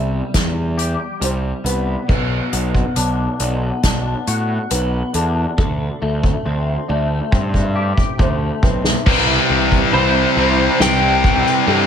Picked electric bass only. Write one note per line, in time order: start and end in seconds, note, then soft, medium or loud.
0.00 0.20 C2 medium
0.34 0.94 E2 medium
1.21 1.51 C2 medium
1.64 1.95 C2 medium
2.09 2.39 B1 medium
2.53 2.83 B1 medium
2.96 3.26 B1 medium
3.40 3.70 B1 medium
3.83 4.13 B1 medium
4.27 4.57 A2 medium
4.71 5.01 B1 medium
5.14 5.44 E2 medium
5.58 5.88 D2 loud
6.02 6.32 D2 loud
6.46 6.76 D2 medium
6.89 7.19 D2 loud
7.32 7.92 G2 medium
8.19 8.49 D2 medium
8.63 8.93 B1 medium
9.06 9.37 C2 loud
9.50 9.80 C2 loud
9.93 10.24 C2 medium
10.36 10.67 C2 medium
10.80 11.41 C2 medium
11.67 11.87 G2 medium